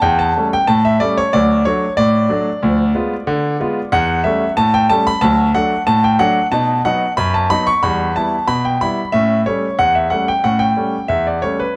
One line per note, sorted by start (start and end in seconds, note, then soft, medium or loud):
0.02 0.30 E2 loud
0.02 0.19 G5 loud
0.19 0.45 A5 loud
0.37 0.54 G3 medium
0.37 0.55 A3 medium
0.37 0.55 C#4 medium
0.53 0.69 G5 loud
0.67 0.96 A2 loud
0.67 0.84 A5 loud
0.85 1.01 E5 medium
1.00 1.18 G3 medium
1.00 1.19 A3 medium
1.00 1.19 C#4 medium
1.00 1.17 D5 loud
1.17 1.33 C#5 loud
1.33 1.61 D2 loud
1.33 1.53 F#3 medium
1.33 1.64 D5 loud
1.65 1.84 F#3 medium
1.65 1.84 A3 medium
1.65 1.84 D4 medium
1.65 1.91 C#5 loud
1.97 2.26 A2 medium
1.97 3.88 D5 loud
2.29 2.48 F#3 medium
2.29 2.48 A3 medium
2.29 2.48 D4 medium
2.63 2.90 D2 loud
2.63 2.82 F3 medium
2.95 3.13 G#3 medium
2.95 3.13 B3 medium
2.95 3.13 F4 medium
3.27 3.55 D3 loud
3.60 3.78 G#3 medium
3.60 3.78 B3 medium
3.60 3.79 F4 medium
3.92 4.20 E2 loud
3.92 4.18 F#5 loud
4.24 4.43 G3 medium
4.24 4.43 A3 medium
4.24 4.43 C#4 medium
4.24 4.50 E5 medium
4.57 4.85 A2 loud
4.57 4.73 A5 loud
4.74 4.90 G5 loud
4.89 5.08 G3 medium
4.89 5.08 A3 medium
4.89 5.08 C#4 medium
4.89 5.06 A5 loud
5.07 5.23 B5 loud
5.21 5.50 D2 loud
5.21 5.42 F#3 medium
5.21 5.48 A5 loud
5.55 5.73 F#3 medium
5.55 5.73 A3 medium
5.55 5.73 D4 medium
5.55 5.81 F#5 loud
5.87 6.15 A2 loud
5.87 6.03 A5 loud
6.04 6.20 G5 loud
6.19 6.38 F#3 medium
6.19 6.38 A3 medium
6.19 6.38 D4 medium
6.19 6.46 F#5 loud
6.52 6.80 B2 medium
6.52 6.71 D#4 medium
6.52 6.78 A5 loud
6.85 7.03 F#3 medium
6.85 7.03 B3 medium
6.85 7.04 D#4 medium
6.85 7.11 F#5 loud
7.17 7.45 F#2 medium
7.17 7.34 B5 loud
7.34 7.50 A5 loud
7.50 7.69 F#3 medium
7.50 7.69 B3 medium
7.50 7.69 D#4 medium
7.50 7.67 B5 loud
7.67 7.83 C#6 loud
7.83 8.11 E2 medium
7.83 8.03 G3 medium
7.83 8.14 B5 loud
8.16 8.34 G3 medium
8.16 8.34 B3 medium
8.16 8.35 E4 medium
8.16 8.47 A5 medium
8.48 8.76 B2 medium
8.48 8.64 B5 loud
8.65 8.81 G5 medium
8.81 8.99 G3 medium
8.81 9.00 B3 medium
8.81 9.00 E4 medium
8.81 9.12 B5 loud
9.12 9.41 A2 medium
9.12 9.32 C#4 medium
9.12 9.39 E5 loud
9.46 9.65 G3 medium
9.46 9.65 A3 medium
9.46 9.65 C#4 medium
9.46 9.77 C#5 medium
9.79 10.06 E2 medium
9.79 9.95 F#5 loud
9.95 10.11 E5 medium
10.10 10.29 G3 medium
10.10 10.29 A3 medium
10.10 10.29 C#4 medium
10.10 10.27 F#5 medium
10.28 10.44 G5 loud
10.44 10.72 A2 medium
10.44 10.64 C#4 medium
10.44 10.60 F#5 medium
10.59 11.06 G5 medium
10.76 10.95 G3 medium
10.76 10.95 A3 soft
10.76 10.95 C#4 medium
11.08 11.37 E2 medium
11.08 11.25 E5 medium
11.27 11.43 D5 medium
11.42 11.61 G3 soft
11.42 11.61 A3 medium
11.42 11.61 C#4 medium
11.42 11.59 C#5 medium
11.60 11.76 B4 medium